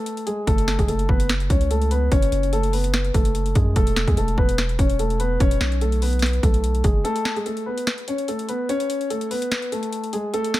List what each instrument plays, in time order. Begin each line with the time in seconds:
Already playing: grand piano A3 A4
0.06 closed hi-hat
0.17 closed hi-hat
0.27 grand piano G#3 G#4, closed hi-hat
0.47 808-style bass F#1, grand piano A3 A4, kick, closed hi-hat
0.58 closed hi-hat
0.68 snare, closed hi-hat
0.79 808-style bass F#1, grand piano G#3 G#4, kick, closed hi-hat
0.88 808-style bass F#1, grand piano A3 A4, closed hi-hat
0.99 closed hi-hat
1.09 808-style bass F#1, grand piano B3 B4, kick
1.20 closed hi-hat
1.29 snare, closed hi-hat
1.40 closed hi-hat
1.50 808-style bass C#2, grand piano C#4 C#5, kick, closed hi-hat
1.61 closed hi-hat
1.71 grand piano A3 A4, closed hi-hat
1.82 closed hi-hat
1.91 grand piano B3 B4, closed hi-hat
2.11 808-style bass F#1, grand piano C#4 C#5, kick, closed hi-hat
2.22 closed hi-hat
2.32 808-style bass F#1, closed hi-hat
2.43 closed hi-hat
2.53 grand piano A3 A4, closed hi-hat
2.63 closed hi-hat
2.73 grand piano B3 B4, open hi-hat
2.84 closed hi-hat
2.94 snare, closed hi-hat
3.05 closed hi-hat
3.14 808-style bass F#1, grand piano A3 A4, kick, closed hi-hat
3.25 closed hi-hat
3.35 closed hi-hat
3.46 closed hi-hat
3.55 808-style bass F#2, grand piano G#3 G#4, kick, closed hi-hat
3.76 808-style bass E1, grand piano A3 A4, kick, closed hi-hat
3.87 closed hi-hat
3.96 snare, closed hi-hat
4.07 808-style bass E2, grand piano G#3 G#4, kick, closed hi-hat
4.17 808-style bass E1, grand piano A3 A4, closed hi-hat
4.28 closed hi-hat
4.38 808-style bass E1, grand piano B3 B4, kick
4.49 closed hi-hat
4.58 snare, closed hi-hat
4.69 closed hi-hat
4.79 808-style bass E1, grand piano C#4 C#5, kick, closed hi-hat
4.90 closed hi-hat
4.99 grand piano A3 A4, closed hi-hat
5.10 closed hi-hat
5.20 grand piano B3 B4, closed hi-hat
5.40 808-style bass E1, grand piano C#4 C#5, kick, closed hi-hat
5.51 closed hi-hat
5.61 808-style bass B1, snare, closed hi-hat
5.72 closed hi-hat
5.81 grand piano A3 A4, closed hi-hat
5.92 closed hi-hat
6.02 grand piano B3 B4, open hi-hat
6.13 closed hi-hat
6.19 snare, closed hi-hat
6.26 closed hi-hat
6.33 closed hi-hat
6.43 808-style bass B1, grand piano A3 A4, kick, closed hi-hat
6.54 closed hi-hat
6.64 closed hi-hat
6.75 closed hi-hat
6.84 808-style bass F#1, grand piano G#3 G#4, kick, closed hi-hat
7.04 grand piano A3 A4, closed hi-hat
7.16 closed hi-hat
7.25 snare, closed hi-hat
7.36 grand piano G#3 G#4, closed hi-hat
7.46 grand piano A3 A4, closed hi-hat
7.57 closed hi-hat
7.66 grand piano B3 B4
7.78 closed hi-hat
7.87 snare, closed hi-hat
7.98 closed hi-hat
8.08 grand piano C#4 C#5, closed hi-hat
8.18 closed hi-hat
8.28 grand piano A3 A4, closed hi-hat
8.39 closed hi-hat
8.49 grand piano B3 B4, closed hi-hat
8.69 grand piano C#4 C#5, closed hi-hat
8.80 closed hi-hat
8.90 closed hi-hat
9.01 closed hi-hat
9.10 grand piano A3 A4, closed hi-hat
9.21 closed hi-hat
9.31 grand piano B3 B4, open hi-hat
9.42 closed hi-hat
9.51 snare, closed hi-hat
9.62 closed hi-hat
9.72 grand piano A3 A4, closed hi-hat
9.83 closed hi-hat
9.93 closed hi-hat
10.04 closed hi-hat
10.13 grand piano G#3 G#4, closed hi-hat
10.34 grand piano A3 A4, closed hi-hat
10.44 closed hi-hat
10.54 snare, closed hi-hat